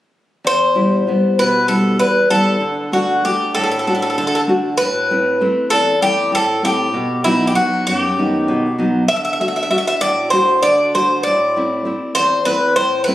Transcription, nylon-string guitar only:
0.44 E2
0.75 B2 G3 E4
1.07 G3 B3 E4
1.39 B2
1.68 G3 B3 E4
1.99 E2
2.30 G3 B3 E4
2.61 D3
2.92 A3 D4 F#4
3.24 A3 D4 F#4
3.57 A2
3.87 A3 D4 F#4
4.18 D3
4.47 A3 D4 F#4
4.80 A2
5.10 A3 C4 E4
5.41 A3 C4 E4
5.72 E2
6.02 A3 C4 E4
6.32 A2
6.63 A3 C4 E4
6.94 B2
7.25 F#3 B3 D#4
7.55 F#3 B3 D#4
7.87 F#2
8.18 D#3 B3 D#4
8.48 B2
8.78 F#3 B3 D#4
9.09 D3
9.40 A3 D4 F#4
9.70 A3 D4 F#4
10.01 A2
10.33 A3 D4 F#4
10.63 D3
10.94 A3 D4 F#4
11.26 A2
11.56 A3 C4 E4
11.85 A3 C4 E4
12.17 E2
12.46 A3 C4 E4
12.77 A2
13.07 A3 C4 E4

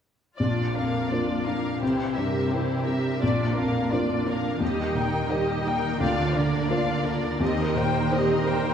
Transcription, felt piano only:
0.40 A#1
0.76 F2
1.11 D4 F4 A#4
1.47 D4
1.82 C2
2.17 G2
2.54 C4 E4 A#4
2.88 C4
3.23 A#1
3.58 F2
3.92 D4 F4 A#4
4.25 D4
4.60 D#2
4.95 A#2
5.29 A#3 G4 A#4
5.66 A#3
6.00 D2
6.35 D3
6.70 A#3 F4 A#4
7.05 A#3
7.40 D#2
7.75 A#2
8.11 A#3 G4 C5
8.47 A#3

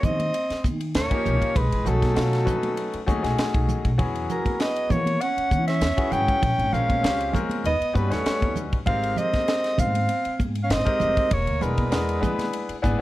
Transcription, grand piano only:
Already playing: F3 A#3 C#4 D#4 G4
1.10 F3 A#3 C#4 D#4 G4
1.85 F#3 A3 C#4 D#4 G#4
2.14 F#3 A3 C#4 D#4 F4
2.45 F#3 A3 C#4 D#4 B4
3.06 F#3 A3 C#4 D#4 G#4
3.22 F#3 A3 C#4 D#4 G#4
3.98 F#3 B3 C#4 E4 G#4
5.97 F#3 B3 C#4 E4 G#4
6.72 G#3 C4 C#4 F4 A#4
7.02 G#3 C4 C#4 F4 G4
7.33 G#3 C4 C#4 F4 A#4
7.93 G3 C#4 D#4 F#4 B4
8.10 G3 C#4 D#4 F#4 B4
8.86 G#3 C4 D#4 G4 A#4
10.85 G#3 C4 D#4 G4 A#4
11.60 B3 D4 E4 G#4 A#4
11.90 B3 D4 E4 G#4 A#4
12.21 B3 D4 E4 G#4 B4
12.82 B3 D4 E4 G#4 B4

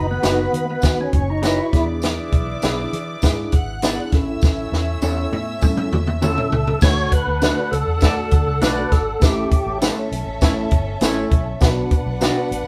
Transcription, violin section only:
Already playing: B4 B5
1.14 C#5 C#6
1.73 D5 D6
3.53 F#5 F#6
4.12 E5 E6
6.82 D4 A4 F#5
9.21 C#4 A4 E5
11.62 D4 B4 F#5

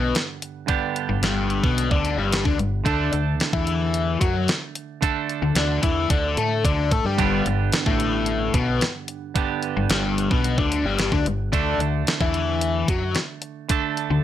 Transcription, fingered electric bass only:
Already playing: B1
1.09 G1
1.22 G1
1.64 B1
1.92 D2
2.18 G1
2.46 D2
2.59 G1
2.85 D2
3.13 D2
3.53 E2
4.21 F#2
5.42 D2
5.55 D2
5.83 E2
6.11 D2
6.37 A2
6.65 D2
6.91 A2
7.05 G2
7.18 G1
7.46 G1
7.86 A1
8.54 B1
9.77 G1
9.90 G1
10.31 B1
10.58 D2
10.84 G1
11.12 D2
11.25 G1
11.54 D2
11.78 D2
12.21 E2
12.88 F#2
14.10 D2

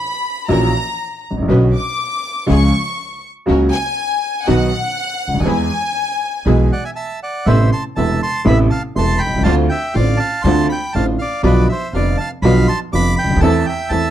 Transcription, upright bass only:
0.50 A#1
1.31 G#1
1.38 A1
1.46 A#1
1.50 B1
2.50 C#2
3.49 C#2
4.48 B1
5.28 C#2
5.35 D2
5.40 D#2
5.46 E2
6.46 B1
7.46 A1
7.97 E1
8.46 A1
8.96 E1
9.27 B1
9.34 C2
9.41 C#2
9.46 D2
9.96 A1
10.44 D2
10.95 A1
11.43 B1
11.93 F1
12.42 B1
12.93 F1
13.24 C#2
13.29 D2
13.36 D#2
13.41 E2
13.90 E2

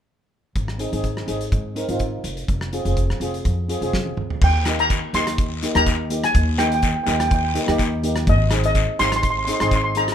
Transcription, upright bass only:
0.56 G#1
0.93 G#1
1.28 G#1
1.52 G#2
1.88 G#1
2.24 F1
2.48 F1
2.85 F1
3.20 F1
3.45 F2
3.81 F1
4.17 C#2
4.42 D#2
5.13 D#2
5.75 D#2
6.35 D#2
7.07 D#2
7.68 D#2
8.27 G#1
9.00 G#1
9.61 G#1

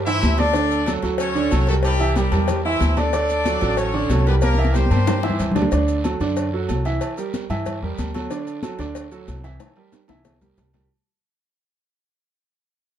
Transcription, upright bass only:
Already playing: G2
0.23 D2
1.03 D2
1.52 C2
2.32 E2
2.81 D2
3.62 A1
4.10 C2
4.91 G2
5.40 D2
5.72 D2
6.20 F#2
6.69 C2
7.50 G2
7.83 E2
7.99 D2
8.79 D2
9.28 C2
10.09 C2
10.58 C2

